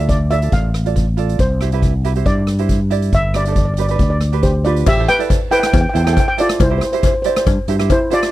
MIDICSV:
0, 0, Header, 1, 5, 480
1, 0, Start_track
1, 0, Key_signature, 0, "major"
1, 0, Tempo, 433526
1, 1542, Time_signature, 4, 2, 24, 8
1, 9207, End_track
2, 0, Start_track
2, 0, Title_t, "Steel pan"
2, 0, Program_c, 0, 114
2, 102, Note_on_c, 0, 74, 71
2, 338, Note_on_c, 0, 76, 75
2, 348, Note_off_c, 0, 74, 0
2, 586, Note_off_c, 0, 76, 0
2, 588, Note_on_c, 0, 77, 72
2, 1261, Note_off_c, 0, 77, 0
2, 1553, Note_on_c, 0, 72, 71
2, 2503, Note_on_c, 0, 74, 81
2, 2539, Note_off_c, 0, 72, 0
2, 3422, Note_off_c, 0, 74, 0
2, 3483, Note_on_c, 0, 76, 92
2, 3723, Note_off_c, 0, 76, 0
2, 3724, Note_on_c, 0, 74, 76
2, 3798, Note_off_c, 0, 74, 0
2, 3818, Note_on_c, 0, 74, 49
2, 3884, Note_off_c, 0, 74, 0
2, 3903, Note_on_c, 0, 74, 50
2, 3953, Note_off_c, 0, 74, 0
2, 3966, Note_on_c, 0, 74, 46
2, 4031, Note_off_c, 0, 74, 0
2, 4044, Note_on_c, 0, 74, 53
2, 4120, Note_off_c, 0, 74, 0
2, 4138, Note_on_c, 0, 74, 42
2, 4207, Note_off_c, 0, 74, 0
2, 4223, Note_on_c, 0, 74, 54
2, 4297, Note_off_c, 0, 74, 0
2, 4308, Note_on_c, 0, 74, 50
2, 4372, Note_off_c, 0, 74, 0
2, 4386, Note_on_c, 0, 74, 52
2, 4447, Note_off_c, 0, 74, 0
2, 4460, Note_on_c, 0, 74, 50
2, 4527, Note_off_c, 0, 74, 0
2, 4540, Note_on_c, 0, 74, 61
2, 4616, Note_off_c, 0, 74, 0
2, 4903, Note_on_c, 0, 72, 72
2, 4905, Note_on_c, 0, 67, 58
2, 5129, Note_off_c, 0, 72, 0
2, 5130, Note_off_c, 0, 67, 0
2, 5143, Note_on_c, 0, 74, 68
2, 5158, Note_on_c, 0, 65, 56
2, 5377, Note_off_c, 0, 65, 0
2, 5394, Note_off_c, 0, 74, 0
2, 5400, Note_on_c, 0, 76, 96
2, 5406, Note_on_c, 0, 67, 77
2, 5618, Note_off_c, 0, 76, 0
2, 5621, Note_off_c, 0, 67, 0
2, 5630, Note_on_c, 0, 79, 116
2, 5641, Note_on_c, 0, 71, 83
2, 6082, Note_off_c, 0, 71, 0
2, 6092, Note_off_c, 0, 79, 0
2, 6105, Note_on_c, 0, 79, 95
2, 6118, Note_on_c, 0, 71, 80
2, 6183, Note_off_c, 0, 79, 0
2, 6195, Note_off_c, 0, 71, 0
2, 6197, Note_on_c, 0, 79, 73
2, 6259, Note_off_c, 0, 79, 0
2, 6273, Note_on_c, 0, 79, 72
2, 6338, Note_off_c, 0, 79, 0
2, 6351, Note_on_c, 0, 79, 65
2, 6420, Note_off_c, 0, 79, 0
2, 6433, Note_on_c, 0, 79, 71
2, 6514, Note_off_c, 0, 79, 0
2, 6527, Note_on_c, 0, 79, 58
2, 6592, Note_off_c, 0, 79, 0
2, 6605, Note_on_c, 0, 79, 61
2, 6678, Note_off_c, 0, 79, 0
2, 6691, Note_on_c, 0, 79, 61
2, 6775, Note_off_c, 0, 79, 0
2, 6787, Note_on_c, 0, 79, 68
2, 6851, Note_off_c, 0, 79, 0
2, 6865, Note_on_c, 0, 79, 67
2, 6941, Note_off_c, 0, 79, 0
2, 6954, Note_on_c, 0, 79, 84
2, 7029, Note_off_c, 0, 79, 0
2, 7088, Note_on_c, 0, 74, 82
2, 7099, Note_on_c, 0, 65, 65
2, 7301, Note_off_c, 0, 74, 0
2, 7307, Note_off_c, 0, 65, 0
2, 7333, Note_on_c, 0, 64, 61
2, 7334, Note_on_c, 0, 72, 80
2, 7401, Note_off_c, 0, 64, 0
2, 7402, Note_off_c, 0, 72, 0
2, 7414, Note_on_c, 0, 72, 56
2, 7481, Note_off_c, 0, 72, 0
2, 7506, Note_on_c, 0, 72, 59
2, 7565, Note_off_c, 0, 72, 0
2, 7579, Note_on_c, 0, 72, 51
2, 7648, Note_off_c, 0, 72, 0
2, 7668, Note_on_c, 0, 72, 54
2, 7731, Note_off_c, 0, 72, 0
2, 7750, Note_on_c, 0, 72, 41
2, 7811, Note_off_c, 0, 72, 0
2, 7830, Note_on_c, 0, 72, 52
2, 7898, Note_off_c, 0, 72, 0
2, 7910, Note_on_c, 0, 72, 43
2, 7975, Note_off_c, 0, 72, 0
2, 7997, Note_on_c, 0, 72, 48
2, 8057, Note_off_c, 0, 72, 0
2, 8070, Note_on_c, 0, 72, 55
2, 8142, Note_off_c, 0, 72, 0
2, 8163, Note_on_c, 0, 72, 59
2, 8225, Note_off_c, 0, 72, 0
2, 8767, Note_on_c, 0, 64, 67
2, 8771, Note_on_c, 0, 72, 89
2, 8977, Note_off_c, 0, 64, 0
2, 8999, Note_on_c, 0, 65, 75
2, 9002, Note_off_c, 0, 72, 0
2, 9007, Note_on_c, 0, 74, 95
2, 9207, Note_off_c, 0, 65, 0
2, 9207, Note_off_c, 0, 74, 0
2, 9207, End_track
3, 0, Start_track
3, 0, Title_t, "Ukulele"
3, 0, Program_c, 1, 24
3, 0, Note_on_c, 1, 65, 58
3, 0, Note_on_c, 1, 69, 49
3, 0, Note_on_c, 1, 74, 54
3, 198, Note_off_c, 1, 65, 0
3, 202, Note_off_c, 1, 69, 0
3, 204, Note_off_c, 1, 74, 0
3, 335, Note_on_c, 1, 65, 65
3, 340, Note_on_c, 1, 69, 63
3, 355, Note_on_c, 1, 74, 75
3, 413, Note_off_c, 1, 65, 0
3, 415, Note_off_c, 1, 69, 0
3, 423, Note_off_c, 1, 74, 0
3, 463, Note_on_c, 1, 65, 59
3, 473, Note_on_c, 1, 69, 50
3, 482, Note_on_c, 1, 74, 60
3, 750, Note_off_c, 1, 65, 0
3, 756, Note_off_c, 1, 69, 0
3, 757, Note_off_c, 1, 74, 0
3, 947, Note_on_c, 1, 65, 57
3, 959, Note_on_c, 1, 69, 49
3, 959, Note_on_c, 1, 74, 66
3, 1164, Note_off_c, 1, 65, 0
3, 1166, Note_off_c, 1, 69, 0
3, 1168, Note_off_c, 1, 74, 0
3, 1294, Note_on_c, 1, 65, 77
3, 1306, Note_on_c, 1, 69, 66
3, 1311, Note_on_c, 1, 74, 78
3, 1538, Note_off_c, 1, 65, 0
3, 1545, Note_off_c, 1, 69, 0
3, 1547, Note_off_c, 1, 74, 0
3, 1787, Note_on_c, 1, 67, 54
3, 1788, Note_on_c, 1, 64, 54
3, 1801, Note_on_c, 1, 72, 66
3, 1860, Note_off_c, 1, 64, 0
3, 1861, Note_off_c, 1, 67, 0
3, 1868, Note_off_c, 1, 72, 0
3, 1911, Note_on_c, 1, 64, 66
3, 1922, Note_on_c, 1, 67, 56
3, 1926, Note_on_c, 1, 71, 71
3, 2126, Note_off_c, 1, 64, 0
3, 2131, Note_off_c, 1, 67, 0
3, 2133, Note_off_c, 1, 71, 0
3, 2263, Note_on_c, 1, 64, 72
3, 2270, Note_on_c, 1, 67, 72
3, 2279, Note_on_c, 1, 71, 87
3, 2340, Note_off_c, 1, 64, 0
3, 2343, Note_off_c, 1, 67, 0
3, 2347, Note_off_c, 1, 71, 0
3, 2388, Note_on_c, 1, 67, 53
3, 2395, Note_on_c, 1, 64, 51
3, 2400, Note_on_c, 1, 72, 67
3, 2676, Note_off_c, 1, 67, 0
3, 2677, Note_off_c, 1, 64, 0
3, 2682, Note_off_c, 1, 72, 0
3, 2866, Note_on_c, 1, 64, 60
3, 2873, Note_on_c, 1, 67, 53
3, 2882, Note_on_c, 1, 72, 57
3, 3085, Note_off_c, 1, 64, 0
3, 3088, Note_off_c, 1, 67, 0
3, 3092, Note_off_c, 1, 72, 0
3, 3213, Note_on_c, 1, 64, 72
3, 3222, Note_on_c, 1, 67, 68
3, 3232, Note_on_c, 1, 74, 79
3, 3461, Note_off_c, 1, 64, 0
3, 3465, Note_off_c, 1, 67, 0
3, 3470, Note_off_c, 1, 74, 0
3, 3697, Note_on_c, 1, 62, 62
3, 3704, Note_on_c, 1, 67, 57
3, 3709, Note_on_c, 1, 71, 57
3, 3778, Note_off_c, 1, 62, 0
3, 3783, Note_off_c, 1, 67, 0
3, 3783, Note_off_c, 1, 71, 0
3, 3839, Note_on_c, 1, 62, 56
3, 3847, Note_on_c, 1, 67, 56
3, 3855, Note_on_c, 1, 69, 64
3, 4052, Note_off_c, 1, 62, 0
3, 4056, Note_off_c, 1, 67, 0
3, 4060, Note_off_c, 1, 69, 0
3, 4189, Note_on_c, 1, 67, 55
3, 4194, Note_on_c, 1, 62, 56
3, 4200, Note_on_c, 1, 71, 70
3, 4265, Note_off_c, 1, 62, 0
3, 4266, Note_off_c, 1, 67, 0
3, 4270, Note_off_c, 1, 71, 0
3, 4319, Note_on_c, 1, 67, 47
3, 4325, Note_on_c, 1, 62, 47
3, 4327, Note_on_c, 1, 71, 65
3, 4603, Note_off_c, 1, 62, 0
3, 4604, Note_off_c, 1, 67, 0
3, 4607, Note_off_c, 1, 71, 0
3, 4788, Note_on_c, 1, 62, 65
3, 4796, Note_on_c, 1, 67, 58
3, 4802, Note_on_c, 1, 71, 75
3, 5006, Note_off_c, 1, 62, 0
3, 5011, Note_off_c, 1, 67, 0
3, 5014, Note_off_c, 1, 71, 0
3, 5151, Note_on_c, 1, 62, 75
3, 5156, Note_on_c, 1, 67, 66
3, 5167, Note_on_c, 1, 71, 79
3, 5390, Note_off_c, 1, 62, 0
3, 5393, Note_off_c, 1, 67, 0
3, 5398, Note_off_c, 1, 71, 0
3, 5520, Note_on_c, 1, 64, 68
3, 5527, Note_on_c, 1, 69, 57
3, 5532, Note_on_c, 1, 72, 72
3, 5657, Note_off_c, 1, 64, 0
3, 5658, Note_off_c, 1, 69, 0
3, 5663, Note_off_c, 1, 72, 0
3, 5744, Note_on_c, 1, 64, 72
3, 5751, Note_on_c, 1, 69, 67
3, 5761, Note_on_c, 1, 74, 69
3, 5964, Note_off_c, 1, 64, 0
3, 5968, Note_off_c, 1, 69, 0
3, 5973, Note_off_c, 1, 74, 0
3, 6096, Note_on_c, 1, 64, 73
3, 6105, Note_on_c, 1, 69, 60
3, 6110, Note_on_c, 1, 72, 88
3, 6394, Note_off_c, 1, 64, 0
3, 6395, Note_off_c, 1, 69, 0
3, 6399, Note_off_c, 1, 72, 0
3, 6569, Note_on_c, 1, 64, 73
3, 6586, Note_on_c, 1, 72, 76
3, 6587, Note_on_c, 1, 69, 60
3, 6654, Note_off_c, 1, 64, 0
3, 6661, Note_off_c, 1, 69, 0
3, 6663, Note_off_c, 1, 72, 0
3, 6710, Note_on_c, 1, 64, 62
3, 6715, Note_on_c, 1, 69, 58
3, 6725, Note_on_c, 1, 72, 78
3, 6926, Note_off_c, 1, 64, 0
3, 6929, Note_off_c, 1, 69, 0
3, 6934, Note_off_c, 1, 72, 0
3, 7056, Note_on_c, 1, 64, 64
3, 7062, Note_on_c, 1, 69, 64
3, 7071, Note_on_c, 1, 72, 82
3, 7278, Note_off_c, 1, 64, 0
3, 7281, Note_off_c, 1, 69, 0
3, 7286, Note_off_c, 1, 72, 0
3, 7421, Note_on_c, 1, 64, 70
3, 7427, Note_on_c, 1, 67, 66
3, 7435, Note_on_c, 1, 72, 77
3, 7565, Note_off_c, 1, 64, 0
3, 7568, Note_off_c, 1, 67, 0
3, 7572, Note_off_c, 1, 72, 0
3, 7669, Note_on_c, 1, 64, 66
3, 7678, Note_on_c, 1, 67, 58
3, 7687, Note_on_c, 1, 72, 78
3, 7884, Note_off_c, 1, 64, 0
3, 7889, Note_off_c, 1, 67, 0
3, 7893, Note_off_c, 1, 72, 0
3, 8024, Note_on_c, 1, 67, 65
3, 8029, Note_on_c, 1, 64, 63
3, 8035, Note_on_c, 1, 74, 87
3, 8314, Note_off_c, 1, 64, 0
3, 8314, Note_off_c, 1, 67, 0
3, 8319, Note_off_c, 1, 74, 0
3, 8504, Note_on_c, 1, 64, 82
3, 8518, Note_on_c, 1, 67, 75
3, 8524, Note_on_c, 1, 72, 84
3, 8579, Note_off_c, 1, 64, 0
3, 8586, Note_off_c, 1, 67, 0
3, 8586, Note_off_c, 1, 72, 0
3, 8620, Note_on_c, 1, 64, 69
3, 8629, Note_on_c, 1, 67, 68
3, 8638, Note_on_c, 1, 72, 81
3, 8838, Note_off_c, 1, 64, 0
3, 8842, Note_off_c, 1, 67, 0
3, 8847, Note_off_c, 1, 72, 0
3, 8972, Note_on_c, 1, 64, 72
3, 8977, Note_on_c, 1, 67, 67
3, 8985, Note_on_c, 1, 72, 88
3, 9192, Note_off_c, 1, 64, 0
3, 9195, Note_off_c, 1, 67, 0
3, 9199, Note_off_c, 1, 72, 0
3, 9207, End_track
4, 0, Start_track
4, 0, Title_t, "Fretless electric bass"
4, 0, Program_c, 2, 35
4, 0, Note_on_c, 2, 38, 81
4, 535, Note_off_c, 2, 38, 0
4, 580, Note_on_c, 2, 33, 73
4, 1498, Note_off_c, 2, 33, 0
4, 1543, Note_on_c, 2, 36, 80
4, 2461, Note_off_c, 2, 36, 0
4, 2503, Note_on_c, 2, 43, 88
4, 3422, Note_off_c, 2, 43, 0
4, 3463, Note_on_c, 2, 31, 84
4, 4383, Note_off_c, 2, 31, 0
4, 4422, Note_on_c, 2, 38, 75
4, 5341, Note_off_c, 2, 38, 0
4, 5389, Note_on_c, 2, 33, 92
4, 5609, Note_off_c, 2, 33, 0
4, 6353, Note_on_c, 2, 40, 98
4, 6467, Note_off_c, 2, 40, 0
4, 6587, Note_on_c, 2, 40, 91
4, 6807, Note_off_c, 2, 40, 0
4, 7311, Note_on_c, 2, 36, 100
4, 7528, Note_off_c, 2, 36, 0
4, 8267, Note_on_c, 2, 43, 114
4, 8381, Note_off_c, 2, 43, 0
4, 8504, Note_on_c, 2, 43, 83
4, 8722, Note_off_c, 2, 43, 0
4, 9207, End_track
5, 0, Start_track
5, 0, Title_t, "Drums"
5, 97, Note_on_c, 9, 36, 79
5, 99, Note_on_c, 9, 42, 54
5, 208, Note_off_c, 9, 36, 0
5, 210, Note_off_c, 9, 42, 0
5, 337, Note_on_c, 9, 42, 70
5, 448, Note_off_c, 9, 42, 0
5, 466, Note_on_c, 9, 42, 59
5, 577, Note_off_c, 9, 42, 0
5, 579, Note_on_c, 9, 36, 91
5, 579, Note_on_c, 9, 42, 52
5, 689, Note_off_c, 9, 36, 0
5, 689, Note_off_c, 9, 42, 0
5, 823, Note_on_c, 9, 37, 75
5, 823, Note_on_c, 9, 42, 65
5, 933, Note_off_c, 9, 37, 0
5, 933, Note_off_c, 9, 42, 0
5, 952, Note_on_c, 9, 42, 45
5, 1061, Note_on_c, 9, 36, 70
5, 1062, Note_off_c, 9, 42, 0
5, 1065, Note_on_c, 9, 42, 50
5, 1171, Note_off_c, 9, 36, 0
5, 1176, Note_off_c, 9, 42, 0
5, 1300, Note_on_c, 9, 42, 61
5, 1411, Note_off_c, 9, 42, 0
5, 1432, Note_on_c, 9, 42, 53
5, 1539, Note_off_c, 9, 42, 0
5, 1539, Note_on_c, 9, 42, 52
5, 1541, Note_on_c, 9, 36, 91
5, 1650, Note_off_c, 9, 42, 0
5, 1651, Note_off_c, 9, 36, 0
5, 1779, Note_on_c, 9, 37, 63
5, 1779, Note_on_c, 9, 42, 64
5, 1890, Note_off_c, 9, 37, 0
5, 1890, Note_off_c, 9, 42, 0
5, 1905, Note_on_c, 9, 42, 51
5, 2016, Note_off_c, 9, 42, 0
5, 2020, Note_on_c, 9, 36, 77
5, 2023, Note_on_c, 9, 42, 53
5, 2130, Note_off_c, 9, 36, 0
5, 2133, Note_off_c, 9, 42, 0
5, 2266, Note_on_c, 9, 42, 67
5, 2376, Note_off_c, 9, 42, 0
5, 2387, Note_on_c, 9, 42, 57
5, 2497, Note_off_c, 9, 42, 0
5, 2500, Note_on_c, 9, 36, 96
5, 2501, Note_on_c, 9, 42, 50
5, 2611, Note_off_c, 9, 36, 0
5, 2612, Note_off_c, 9, 42, 0
5, 2736, Note_on_c, 9, 37, 64
5, 2736, Note_on_c, 9, 42, 69
5, 2846, Note_off_c, 9, 37, 0
5, 2846, Note_off_c, 9, 42, 0
5, 2863, Note_on_c, 9, 42, 51
5, 2974, Note_off_c, 9, 42, 0
5, 2978, Note_on_c, 9, 42, 57
5, 2979, Note_on_c, 9, 36, 76
5, 3089, Note_off_c, 9, 42, 0
5, 3090, Note_off_c, 9, 36, 0
5, 3219, Note_on_c, 9, 42, 65
5, 3330, Note_off_c, 9, 42, 0
5, 3347, Note_on_c, 9, 42, 57
5, 3458, Note_off_c, 9, 42, 0
5, 3462, Note_on_c, 9, 36, 91
5, 3462, Note_on_c, 9, 42, 50
5, 3572, Note_off_c, 9, 36, 0
5, 3572, Note_off_c, 9, 42, 0
5, 3699, Note_on_c, 9, 37, 71
5, 3699, Note_on_c, 9, 42, 72
5, 3810, Note_off_c, 9, 37, 0
5, 3810, Note_off_c, 9, 42, 0
5, 3824, Note_on_c, 9, 42, 59
5, 3935, Note_off_c, 9, 42, 0
5, 3937, Note_on_c, 9, 42, 55
5, 3941, Note_on_c, 9, 36, 73
5, 4048, Note_off_c, 9, 42, 0
5, 4052, Note_off_c, 9, 36, 0
5, 4173, Note_on_c, 9, 42, 74
5, 4284, Note_off_c, 9, 42, 0
5, 4302, Note_on_c, 9, 42, 54
5, 4413, Note_off_c, 9, 42, 0
5, 4418, Note_on_c, 9, 42, 50
5, 4420, Note_on_c, 9, 36, 88
5, 4528, Note_off_c, 9, 42, 0
5, 4531, Note_off_c, 9, 36, 0
5, 4658, Note_on_c, 9, 37, 66
5, 4658, Note_on_c, 9, 42, 69
5, 4768, Note_off_c, 9, 37, 0
5, 4768, Note_off_c, 9, 42, 0
5, 4793, Note_on_c, 9, 42, 48
5, 4902, Note_off_c, 9, 42, 0
5, 4902, Note_on_c, 9, 42, 55
5, 4904, Note_on_c, 9, 36, 72
5, 5012, Note_off_c, 9, 42, 0
5, 5015, Note_off_c, 9, 36, 0
5, 5145, Note_on_c, 9, 42, 59
5, 5255, Note_off_c, 9, 42, 0
5, 5275, Note_on_c, 9, 42, 58
5, 5386, Note_off_c, 9, 42, 0
5, 5386, Note_on_c, 9, 56, 83
5, 5387, Note_on_c, 9, 36, 104
5, 5389, Note_on_c, 9, 49, 93
5, 5497, Note_off_c, 9, 56, 0
5, 5498, Note_off_c, 9, 36, 0
5, 5500, Note_off_c, 9, 49, 0
5, 5630, Note_on_c, 9, 37, 83
5, 5630, Note_on_c, 9, 42, 74
5, 5741, Note_off_c, 9, 37, 0
5, 5741, Note_off_c, 9, 42, 0
5, 5760, Note_on_c, 9, 42, 63
5, 5869, Note_on_c, 9, 36, 89
5, 5870, Note_on_c, 9, 56, 59
5, 5871, Note_off_c, 9, 42, 0
5, 5874, Note_on_c, 9, 42, 58
5, 5980, Note_off_c, 9, 36, 0
5, 5981, Note_off_c, 9, 56, 0
5, 5984, Note_off_c, 9, 42, 0
5, 6112, Note_on_c, 9, 42, 86
5, 6222, Note_off_c, 9, 42, 0
5, 6236, Note_on_c, 9, 37, 92
5, 6236, Note_on_c, 9, 42, 63
5, 6347, Note_off_c, 9, 37, 0
5, 6347, Note_off_c, 9, 42, 0
5, 6349, Note_on_c, 9, 36, 107
5, 6351, Note_on_c, 9, 42, 61
5, 6351, Note_on_c, 9, 56, 78
5, 6460, Note_off_c, 9, 36, 0
5, 6462, Note_off_c, 9, 42, 0
5, 6462, Note_off_c, 9, 56, 0
5, 6592, Note_on_c, 9, 42, 80
5, 6703, Note_off_c, 9, 42, 0
5, 6719, Note_on_c, 9, 37, 81
5, 6719, Note_on_c, 9, 42, 64
5, 6829, Note_on_c, 9, 56, 66
5, 6830, Note_off_c, 9, 37, 0
5, 6830, Note_off_c, 9, 42, 0
5, 6831, Note_on_c, 9, 36, 85
5, 6836, Note_on_c, 9, 42, 64
5, 6940, Note_off_c, 9, 56, 0
5, 6941, Note_off_c, 9, 36, 0
5, 6947, Note_off_c, 9, 42, 0
5, 7066, Note_on_c, 9, 42, 77
5, 7177, Note_off_c, 9, 42, 0
5, 7190, Note_on_c, 9, 37, 85
5, 7190, Note_on_c, 9, 42, 68
5, 7300, Note_off_c, 9, 37, 0
5, 7300, Note_off_c, 9, 42, 0
5, 7307, Note_on_c, 9, 36, 98
5, 7307, Note_on_c, 9, 42, 59
5, 7313, Note_on_c, 9, 56, 85
5, 7417, Note_off_c, 9, 36, 0
5, 7418, Note_off_c, 9, 42, 0
5, 7424, Note_off_c, 9, 56, 0
5, 7544, Note_on_c, 9, 37, 80
5, 7544, Note_on_c, 9, 42, 81
5, 7654, Note_off_c, 9, 37, 0
5, 7654, Note_off_c, 9, 42, 0
5, 7670, Note_on_c, 9, 42, 71
5, 7781, Note_off_c, 9, 42, 0
5, 7783, Note_on_c, 9, 42, 64
5, 7784, Note_on_c, 9, 36, 83
5, 7794, Note_on_c, 9, 56, 71
5, 7894, Note_off_c, 9, 42, 0
5, 7895, Note_off_c, 9, 36, 0
5, 7904, Note_off_c, 9, 56, 0
5, 8018, Note_on_c, 9, 42, 83
5, 8129, Note_off_c, 9, 42, 0
5, 8154, Note_on_c, 9, 37, 92
5, 8154, Note_on_c, 9, 42, 65
5, 8265, Note_off_c, 9, 37, 0
5, 8265, Note_off_c, 9, 42, 0
5, 8266, Note_on_c, 9, 36, 114
5, 8268, Note_on_c, 9, 42, 67
5, 8269, Note_on_c, 9, 56, 89
5, 8377, Note_off_c, 9, 36, 0
5, 8379, Note_off_c, 9, 42, 0
5, 8380, Note_off_c, 9, 56, 0
5, 8502, Note_on_c, 9, 42, 80
5, 8613, Note_off_c, 9, 42, 0
5, 8631, Note_on_c, 9, 37, 79
5, 8631, Note_on_c, 9, 42, 57
5, 8742, Note_off_c, 9, 37, 0
5, 8742, Note_off_c, 9, 42, 0
5, 8744, Note_on_c, 9, 36, 88
5, 8746, Note_on_c, 9, 56, 80
5, 8750, Note_on_c, 9, 42, 58
5, 8855, Note_off_c, 9, 36, 0
5, 8857, Note_off_c, 9, 56, 0
5, 8861, Note_off_c, 9, 42, 0
5, 8983, Note_on_c, 9, 42, 80
5, 9094, Note_off_c, 9, 42, 0
5, 9109, Note_on_c, 9, 37, 81
5, 9109, Note_on_c, 9, 42, 64
5, 9207, Note_off_c, 9, 37, 0
5, 9207, Note_off_c, 9, 42, 0
5, 9207, End_track
0, 0, End_of_file